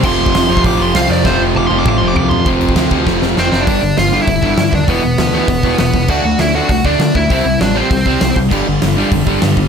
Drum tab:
CC |x---------------|----------------|x-x-x-x---------|----------------|
HH |----o---o---o---|----------------|----------------|o---o---o---o---|
SD |----o-------o---|o---------------|----o---o-o-o-o-|----o-------o---|
T1 |----------------|----o-o---------|----------------|----------------|
T2 |----------------|--------o-------|----------------|----------------|
FT |----------------|------------o-o-|----------------|----------------|
BD |o--o---oo-------|o-------o-------|o--o--o-o-------|o-------o-o---o-|

CC |----------------|x---------------|----------------|x---------------|
HH |o---o---o---o---|----o---o---o---|o---o---o---o---|----o---o---o---|
SD |----o-------o---|----o-------o---|----o-------o---|----o-------o---|
T1 |----------------|----------------|----------------|----------------|
T2 |----------------|----------------|----------------|----------------|
FT |----------------|----------------|----------------|----------------|
BD |o-------o-o---o-|o-------o-o---o-|o-------o-o---o-|o-------o-o---o-|